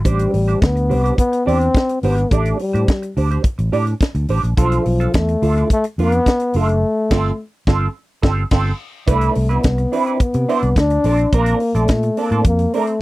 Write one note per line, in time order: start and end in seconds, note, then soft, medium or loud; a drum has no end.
0.05 0.25 A1 loud
0.05 0.63 G3 medium
0.05 0.31 D4 medium
0.05 0.31 G4 medium
0.05 0.31 C5 medium
0.05 kick loud
0.05 closed hi-hat medium
0.19 closed hi-hat medium
0.33 0.54 A1 medium
0.33 muted clean electric guitar stroke soft
0.33 open hi-hat medium
0.48 0.60 D4 soft
0.48 0.61 G4 medium
0.48 0.61 C5 medium
0.48 closed hi-hat soft
0.61 0.92 D2 medium
0.61 1.17 B3 loud
0.61 muted clean electric guitar stroke soft
0.61 kick loud
0.61 snare loud
0.61 closed hi-hat medium
0.76 muted clean electric guitar stroke soft
0.76 closed hi-hat soft
0.89 1.11 C2 medium
0.89 1.03 D4 medium
0.89 1.03 G4 medium
0.89 1.02 C5 medium
0.89 open hi-hat medium
1.03 1.17 D4 soft
1.03 1.17 G4 medium
1.03 1.18 C5 medium
1.03 closed hi-hat soft
1.17 1.47 B3 loud
1.17 muted clean electric guitar stroke soft
1.17 kick loud
1.17 closed hi-hat medium
1.32 muted clean electric guitar stroke soft
1.32 closed hi-hat medium
1.46 1.67 E2 medium
1.46 2.01 C4 loud
1.46 1.66 D4 medium
1.46 1.60 G4 medium
1.46 1.60 D5 medium
1.46 open hi-hat medium
1.60 muted clean electric guitar stroke medium
1.60 closed hi-hat soft
1.75 muted clean electric guitar stroke soft
1.75 kick loud
1.75 snare loud
1.75 closed hi-hat soft
1.89 muted clean electric guitar stroke soft
1.89 closed hi-hat soft
2.02 2.23 G#1 medium
2.02 2.33 B3 medium
2.02 2.24 D4 medium
2.02 2.17 G4 medium
2.02 2.17 C5 medium
2.02 open hi-hat medium
2.18 muted clean electric guitar stroke soft
2.18 closed hi-hat soft
2.31 2.52 A1 loud
2.31 2.59 A3 medium
2.31 2.58 D4 medium
2.31 2.58 G4 medium
2.31 2.58 D5 medium
2.31 kick loud
2.31 closed hi-hat medium
2.45 closed hi-hat medium
2.59 3.12 G3 medium
2.59 muted clean electric guitar stroke medium
2.59 open hi-hat medium
2.73 2.84 A2 medium
2.73 2.88 D4 soft
2.73 2.88 G4 medium
2.73 2.88 C5 medium
2.73 closed hi-hat medium
2.88 muted clean electric guitar stroke soft
2.88 kick loud
2.88 snare loud
2.88 closed hi-hat medium
3.02 muted clean electric guitar stroke medium
3.02 closed hi-hat soft
3.17 3.37 D2 medium
3.17 3.31 D4 medium
3.17 3.30 G4 medium
3.17 3.30 C5 medium
3.17 open hi-hat medium
3.31 3.43 D4 medium
3.31 3.44 G4 medium
3.31 3.44 C5 medium
3.31 closed hi-hat soft
3.44 kick loud
3.44 closed hi-hat medium
3.58 3.69 A1 medium
3.58 muted clean electric guitar stroke soft
3.58 closed hi-hat soft
3.72 3.93 A2 medium
3.72 3.93 D4 medium
3.72 3.87 G4 medium
3.72 3.87 D5 medium
3.72 open hi-hat medium
3.87 muted clean electric guitar stroke soft
3.87 closed hi-hat soft
4.01 muted clean electric guitar stroke soft
4.01 kick loud
4.01 snare loud
4.01 closed hi-hat medium
4.15 4.25 D2 medium
4.15 muted clean electric guitar stroke soft
4.15 closed hi-hat soft
4.28 4.39 A1 medium
4.28 4.49 D4 medium
4.28 4.43 G4 medium
4.28 4.42 C5 medium
4.28 open hi-hat medium
4.43 4.53 A#1 medium
4.43 muted clean electric guitar stroke soft
4.43 closed hi-hat soft
4.57 4.78 B1 loud
4.57 5.18 F3 medium
4.57 4.83 D4 medium
4.57 4.83 F4 medium
4.57 4.84 A4 medium
4.57 kick loud
4.57 closed hi-hat medium
4.72 closed hi-hat medium
4.85 5.06 B1 loud
4.85 muted clean electric guitar stroke soft
4.85 open hi-hat medium
5.00 5.13 D4 soft
5.00 5.13 F4 medium
5.00 5.13 A4 medium
5.00 closed hi-hat soft
5.14 5.34 E2 medium
5.14 5.71 A3 loud
5.14 muted clean electric guitar stroke soft
5.14 kick loud
5.14 snare loud
5.14 closed hi-hat medium
5.29 muted clean electric guitar stroke soft
5.29 closed hi-hat soft
5.42 5.62 D2 medium
5.42 5.57 D4 medium
5.42 5.56 F4 medium
5.42 5.55 A4 medium
5.42 open hi-hat medium
5.57 5.69 D4 soft
5.57 5.70 F4 soft
5.57 5.70 A4 medium
5.57 closed hi-hat soft
5.70 5.85 A3 loud
5.70 muted clean electric guitar stroke soft
5.70 kick loud
5.70 closed hi-hat medium
5.84 muted clean electric guitar stroke medium
5.84 closed hi-hat medium
5.98 6.18 F2 medium
5.98 6.59 B3 loud
5.98 6.19 D4 medium
5.98 6.13 F4 medium
5.98 6.13 B4 medium
5.98 open hi-hat medium
6.12 muted clean electric guitar stroke soft
6.12 closed hi-hat soft
6.26 kick loud
6.26 snare loud
6.26 closed hi-hat medium
6.40 muted clean electric guitar stroke soft
6.40 closed hi-hat soft
6.54 6.83 F#1 medium
6.54 6.75 D4 medium
6.54 6.69 F4 medium
6.54 6.68 A4 medium
6.54 open hi-hat medium
6.58 7.41 A3 loud
6.69 muted clean electric guitar stroke soft
6.69 closed hi-hat soft
7.11 7.30 G1 loud
7.11 7.31 C4 loud
7.11 7.31 F4 medium
7.11 7.30 A4 medium
7.11 kick medium
7.11 snare loud
7.11 crash medium
7.67 7.86 G1 medium
7.67 7.87 C4 medium
7.67 7.87 F4 medium
7.67 7.87 A4 medium
7.67 kick loud
7.67 snare medium
8.22 8.43 G1 medium
8.22 8.43 C4 medium
8.22 8.43 F4 medium
8.22 8.42 A4 medium
8.22 kick loud
8.22 snare loud
8.51 8.71 G1 loud
8.51 8.71 C4 loud
8.51 8.71 F4 medium
8.51 8.71 A4 medium
8.51 kick loud
8.51 snare medium
8.51 crash medium
9.07 9.28 C2 loud
9.07 9.53 A3 medium
9.07 9.33 D4 medium
9.07 9.34 E4 medium
9.07 9.34 B4 medium
9.07 kick loud
9.07 closed hi-hat medium
9.21 closed hi-hat medium
9.35 9.56 C2 loud
9.35 muted clean electric guitar stroke soft
9.35 open hi-hat medium
9.49 9.95 B3 medium
9.49 9.62 D4 soft
9.49 9.63 E4 medium
9.49 9.63 B4 medium
9.49 closed hi-hat soft
9.63 9.85 C2 medium
9.63 muted clean electric guitar stroke soft
9.63 kick loud
9.63 snare loud
9.63 closed hi-hat medium
9.78 muted clean electric guitar stroke soft
9.78 closed hi-hat soft
9.92 10.24 C4 medium
9.92 10.07 D4 medium
9.92 10.06 E4 medium
9.92 10.05 B4 medium
9.92 open hi-hat medium
10.06 10.19 D4 medium
10.06 10.19 E4 medium
10.06 10.20 B4 medium
10.06 closed hi-hat soft
10.20 10.78 B3 medium
10.20 muted clean electric guitar stroke soft
10.20 muted fingered electric bass stroke soft
10.20 kick loud
10.20 closed hi-hat medium
10.34 10.45 C3 medium
10.34 muted clean electric guitar stroke soft
10.34 closed hi-hat medium
10.49 10.69 D4 medium
10.49 10.63 E4 medium
10.49 10.63 C5 medium
10.49 open hi-hat medium
10.63 10.73 C2 medium
10.63 muted clean electric guitar stroke soft
10.63 closed hi-hat soft
10.76 10.97 D2 medium
10.76 11.36 D4 loud
10.76 muted clean electric guitar stroke soft
10.76 kick loud
10.76 snare loud
10.76 closed hi-hat medium
10.90 muted clean electric guitar stroke soft
10.90 closed hi-hat soft
11.04 11.25 A#1 loud
11.04 11.25 C4 medium
11.04 11.19 D4 medium
11.04 11.18 A4 medium
11.04 open hi-hat medium
11.19 muted clean electric guitar stroke soft
11.19 closed hi-hat soft
11.32 11.53 A#1 loud
11.32 11.78 A#3 loud
11.32 11.59 C4 medium
11.32 11.59 D4 medium
11.32 11.59 A#4 loud
11.32 kick loud
11.32 closed hi-hat medium
11.46 closed hi-hat medium
11.60 muted clean electric guitar stroke soft
11.60 open hi-hat medium
11.75 11.85 A#1 loud
11.75 12.21 A3 medium
11.75 11.89 C4 medium
11.75 11.89 D4 medium
11.75 11.90 A4 medium
11.75 closed hi-hat soft
11.88 12.09 A#2 medium
11.88 kick loud
11.88 snare medium
11.88 closed hi-hat medium
12.03 muted clean electric guitar stroke soft
12.03 closed hi-hat soft
12.17 12.46 A#3 medium
12.17 12.31 C4 medium
12.17 12.31 D4 medium
12.17 12.31 A4 medium
12.17 open hi-hat medium
12.31 12.41 A2 medium
12.31 12.44 C4 medium
12.31 12.45 D4 medium
12.31 12.45 A4 medium
12.31 closed hi-hat medium
12.45 12.65 F2 medium
12.45 12.72 A#3 medium
12.45 kick loud
12.45 closed hi-hat medium
12.59 muted clean electric guitar stroke soft
12.59 closed hi-hat soft
12.73 13.02 A3 medium
12.73 12.94 C4 medium
12.73 12.87 D4 medium
12.73 12.88 A#4 medium
12.73 open hi-hat medium
12.87 muted clean electric guitar stroke medium
12.87 closed hi-hat soft